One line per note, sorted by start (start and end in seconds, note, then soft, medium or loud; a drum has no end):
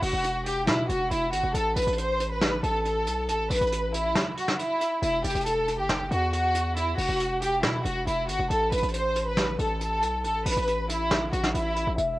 0.02 0.12 E1 loud
0.02 0.43 F#4 medium
0.02 open hi-hat medium
0.13 0.69 E1 loud
0.24 closed hi-hat medium
0.46 0.64 G4 medium
0.46 closed hi-hat medium
0.67 0.88 B2 loud
0.67 0.85 E4 medium
0.67 snare loud
0.89 1.10 E1 loud
0.89 1.07 F#4 medium
0.89 closed hi-hat medium
1.11 1.34 E1 loud
1.11 1.29 E4 medium
1.11 closed hi-hat medium
1.33 1.43 G1 loud
1.33 1.51 F#4 medium
1.33 closed hi-hat medium
1.43 1.54 E1 loud
1.54 1.75 A1 loud
1.54 1.73 A4 loud
1.54 closed hi-hat medium
1.76 1.87 A1 loud
1.76 1.94 B4 medium
1.76 closed hi-hat medium
1.82 closed hi-hat medium
1.87 2.60 A1 loud
1.87 closed hi-hat medium
1.92 closed hi-hat soft
1.98 2.29 C5 medium
1.98 closed hi-hat medium
2.20 closed hi-hat medium
2.31 2.61 B4 medium
2.41 snare loud
2.63 3.08 A1 loud
2.63 2.81 A4 medium
2.63 closed hi-hat medium
2.85 3.26 A4 medium
2.85 closed hi-hat medium
3.07 3.30 B1 loud
3.07 closed hi-hat medium
3.28 3.49 A1 loud
3.28 3.47 A4 medium
3.28 closed hi-hat medium
3.50 3.61 A1 loud
3.50 3.91 B4 medium
3.50 closed hi-hat medium
3.50 open hi-hat medium
3.56 closed hi-hat medium
3.61 4.13 A1 loud
3.61 closed hi-hat medium
3.66 closed hi-hat soft
3.72 closed hi-hat medium
3.93 4.34 E4 medium
3.93 closed hi-hat medium
4.15 snare loud
4.37 4.55 F#4 medium
4.37 closed hi-hat medium
4.48 snare medium
4.58 4.99 E4 medium
4.58 closed hi-hat medium
4.81 closed hi-hat medium
5.02 5.23 E1 loud
5.02 5.20 E4 loud
5.02 closed hi-hat medium
5.24 5.34 E1 loud
5.24 5.42 G4 medium
5.24 closed hi-hat medium
5.29 closed hi-hat medium
5.35 5.80 E1 loud
5.35 closed hi-hat medium
5.40 closed hi-hat soft
5.46 5.77 A4 medium
5.46 closed hi-hat medium
5.68 closed hi-hat medium
5.78 6.09 F#1 loud
5.78 6.09 G4 medium
5.89 snare loud
6.11 6.94 E2 loud
6.11 6.29 F#4 medium
6.11 closed hi-hat medium
6.33 6.74 F#4 medium
6.33 closed hi-hat medium
6.54 closed hi-hat medium
6.76 6.94 E4 medium
6.76 closed hi-hat medium
6.98 7.08 E1 loud
6.98 7.39 F#4 medium
6.98 open hi-hat medium
7.09 7.65 E1 loud
7.20 closed hi-hat medium
7.42 7.60 G4 medium
7.42 closed hi-hat medium
7.63 7.84 B2 loud
7.63 7.81 E4 medium
7.63 snare loud
7.85 8.06 E1 loud
7.85 8.03 F#4 medium
7.85 closed hi-hat medium
8.07 8.30 E1 loud
8.07 8.25 E4 medium
8.07 closed hi-hat medium
8.28 8.39 G1 loud
8.28 8.46 F#4 medium
8.28 closed hi-hat medium
8.39 8.50 E1 loud
8.50 8.71 A1 loud
8.50 8.68 A4 loud
8.50 closed hi-hat medium
8.72 8.82 A1 loud
8.72 8.90 B4 medium
8.72 closed hi-hat medium
8.77 closed hi-hat medium
8.83 9.56 A1 loud
8.83 closed hi-hat medium
8.88 closed hi-hat soft
8.94 9.24 C5 medium
8.94 closed hi-hat medium
9.15 closed hi-hat medium
9.26 9.57 B4 medium
9.37 snare loud
9.59 10.04 A1 loud
9.59 9.77 A4 medium
9.59 closed hi-hat medium
9.81 10.21 A4 medium
9.81 closed hi-hat medium
10.02 10.26 B1 loud
10.02 closed hi-hat medium
10.24 10.45 A1 loud
10.24 10.42 A4 medium
10.24 closed hi-hat medium
10.46 10.56 A1 loud
10.46 10.87 B4 medium
10.46 closed hi-hat medium
10.46 open hi-hat medium
10.51 closed hi-hat medium
10.57 11.30 A1 loud
10.57 closed hi-hat medium
10.62 closed hi-hat soft
10.67 closed hi-hat medium
10.89 11.30 E4 medium
10.89 closed hi-hat medium
11.11 snare loud
11.33 11.54 A1 loud
11.33 11.51 F#4 medium
11.33 closed hi-hat medium
11.44 snare medium
11.54 11.86 A1 loud
11.54 11.95 E4 medium
11.54 closed hi-hat medium
11.76 closed hi-hat medium
11.87 11.98 A1 loud
11.98 12.19 E1 loud
11.98 12.16 E5 medium
11.98 closed hi-hat medium